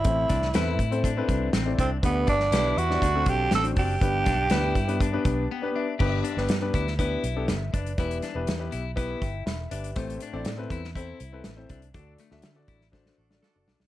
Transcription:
<<
  \new Staff \with { instrumentName = "Grand piano" } { \time 4/4 \key g \major \tempo 4 = 121 << { r1 | r1 | r2 r8 a''8 g''8 e''8 | r2. e''8 <b' d''>8~ |
<b' d''>8 r2 <e'' g''>8 <e'' b''>8 <g' b' e''>8~ | <g' b' e''>8 r2. r8 | r1 | } \\ { <c' e' a' c''>8 r8 <c' e' a' b'>8 r16 <c' e' a' c''>16 r16 <c' e' a' b'>8 r8 <c' e' a' d''>8 r16 | <b d' g' b'>8 r8 <b d' g' b'>8 r16 <b d' g' d''>16 r16 <c' d' fis' a'>8 r8 <c' d' fis' c''>8 r16 | <b d' g' b'>8 r8 <b d' g' b'>8 r16 <b d' g' b'>16 r16 <b d' g' b'>8 r8 <b d' g' b'>8 r16 | <b d' g' b'>8 r16 <b d' g' b'>16 r16 <b d' g' b'>8 r16 <b d' g' b'>8 r16 <b d' g' a'>16 r4 |
<b e' g' b'>8 r16 <b e' g' b'>16 r16 <b e' g' b'>8 r16 <b e' g' b'>8 r4. | <c' e' a' c''>8 r16 <c' e' a' d''>16 r16 <c' e' a' b'>8 r16 <c' e' a' c''>8 r16 <c' e' a' b'>16 r16 <c' e' a' c''>8 r16 | <d' fis' a' d''>8 r16 <d' fis' a' e''>16 r16 <d' fis' a' d''>8 r16 <d' fis' a' c''>8 r16 <d' fis' a' d''>16 r16 <d' fis' a' d''>8 r16 | } >> }
  \new Staff \with { instrumentName = "Grand piano" } { \clef bass \time 4/4 \key g \major a,4. r2 r8 | d4. r8 d4. r8 | g,4. r2 r8 | g,4. r2 r8 |
e4. r2 r8 | a,4. r2 r8 | d4. r2 r8 | }
  \new Staff \with { instrumentName = "Saxophone section" } { \time 4/4 \key g \major r1 | r1 | r1 | r1 |
r1 | r1 | r2 r8 <d' fis' a'>16 r16 <d' fis' a'>8. r16 | }
  \new Staff \with { instrumentName = "Tenor saxophone" } { \time 4/4 \key g \major e'4. r2 c'8 | b8 d'4 fis'4 g'8 a'8 g'8~ | g'2 r2 | r1 |
r1 | r1 | r1 | }
  \new Staff \with { instrumentName = "Clean electric guitar" } { \time 4/4 \key g \major r8 d'8 e'4 d'4 c'8 d'8 | r8 d'8 e'4 d'4 c'8 d'8 | r8 d'8 e'4 d'4 b8 d'8 | g'8 d'8 r8 e'8 e'4 r8 d'8 |
e'8 d'8 r8 e'8 e'4 r8 d'8 | a8 d'8 r8 e'8 e'4 r8 d'8 | d'8 a8 r8 e'8 d'4 r8 d'8 | }
  \new Staff \with { instrumentName = "Fingered electric bass" } { \clef bass \time 4/4 \key g \major a,,8 c,8 e,8 a,4 c,8 a,,8 c,8 | d,8 g,,8 b,,8 e,8 d,8 b,,8 a,,8 fis,,8 | g,,8 b,,8 d,8 g,4 b,,8 r4 | g,,8 r16 g,,16 g,8 d,4 b,,8 g,,8 fis,,8 |
e,,8 r16 e,,16 e,8 b,,4 g,,8 e,,8 g,,8 | a,,8 r16 a,,16 a,8 e,4 c,8 a,,8 c,8 | d,8 r16 d,16 d8 a,,4 a,,8 r16 fis,,16 b,,16 c,16 | }
  \new DrumStaff \with { instrumentName = "Drums" } \drummode { \time 4/4 <hh bd>8 <hh bd sn>16 sn16 <hh sn>8 <hh bd>16 hh16 <hh bd>8 <hh bd>8 <hh sn>8 <hh bd>8 | <hh bd>8 <hh bd>16 sn16 <hh sn>8 hh16 sn16 <hh bd>8 <hh bd>8 <hh sn>16 hh16 <hho bd>8 | <hh bd>8 <hh bd sn>8 <hh sn>8 <hh bd>16 hh16 <hh bd>8 <hh bd>8 r4 | <cymc bd>8 hh16 sn16 <hh sn>8 <hh bd>16 sn16 <hh bd>8 hh8 <hh sn>8 <hh bd>16 hh16 |
<hh bd>16 hh16 <hh sn>8 <hh sn>8 hh8 <hh bd>8 <hh bd>8 <hh sn>8 hh16 hh16 | <hh bd>16 hh16 hh8 <hh sn>8 <hh bd>16 sn16 <hh bd>8 hh8 <hh sn>8 <hh bd>16 hh16 | <hh bd>8 <hh sn>16 sn16 <hh sn>8 <hh bd>16 sn16 <bd sn>16 sn8 sn16 sn8 sn16 sn16 | }
>>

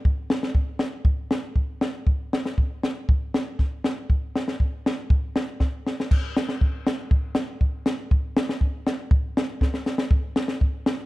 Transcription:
\new DrumStaff \with { instrumentName = "Drums" } \drummode { \time 2/4 \tempo 4 = 120 bd8 sn16 sn16 bd8 sn8 | bd8 sn8 bd8 sn8 | bd8 sn16 sn16 bd8 sn8 | bd8 sn8 <bd sn>8 sn8 |
bd8 sn16 sn16 bd8 sn8 | bd8 sn8 <bd sn>8 sn16 sn16 | <cymc bd>8 <hhp sn>16 sn16 bd8 <hhp sn>8 | bd8 <hhp sn>8 bd8 <hhp sn>8 |
bd8 <hhp sn>16 sn16 bd8 <hhp sn>8 | bd8 <hhp sn>8 <bd sn>16 sn16 <hhp sn>16 sn16 | bd8 <hhp sn>16 sn16 bd8 <hhp sn>8 | }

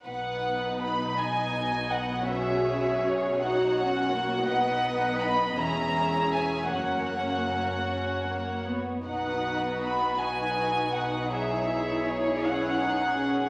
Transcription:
<<
  \new Staff \with { instrumentName = "Violin section" } { \time 6/8 \key b \major \tempo 4. = 54 fis''4 b''8 gis''4 fis''8 | e''4 cis''8 fis''4. | fis''4 b''8 ais''4 gis''8 | fis''2~ fis''8 r8 |
fis''4 b''8 gis''4 fis''8 | e''4 cis''8 fis''4. | }
  \new Staff \with { instrumentName = "Violin section" } { \time 6/8 \key b \major << { b'4. dis''4. | cis''2. | dis''4. e''4. | cis''2~ cis''8. r16 |
b'4. b'4. | cis''2. | } \\ { b'2. | gis'4. fis'4. | b'4. gis'4. | fis'2~ fis'8. r16 |
fis'2. | gis'2. | } >> }
  \new Staff \with { instrumentName = "Viola section" } { \time 6/8 \key b \major << { dis'2. | fis'4. fis'4. | dis'4. cis'4. | cis'4. cis'8 ais8 b8 |
dis'4. dis'4. | e'4. cis'4. | } \\ { b4. b4. | cis'4. dis'8 cis'8 ais8 | b4. cis'4. | ais4. r4. |
b4. dis'4.~ | dis'4. e'8 dis'8 cis'8 | } >> }
  \new Staff \with { instrumentName = "Cello section" } { \clef bass \time 6/8 \key b \major b,2.~ | b,2. | b,4. e,4. | fis,2~ fis,8. r16 |
b,2.~ | b,2. | }
  \new Staff \with { instrumentName = "Double bass section" } { \clef bass \time 6/8 \key b \major b,,2.~ | b,,2. | b,,4. e,,4. | fis,,2~ fis,,8. r16 |
b,,2.~ | b,,2. | }
>>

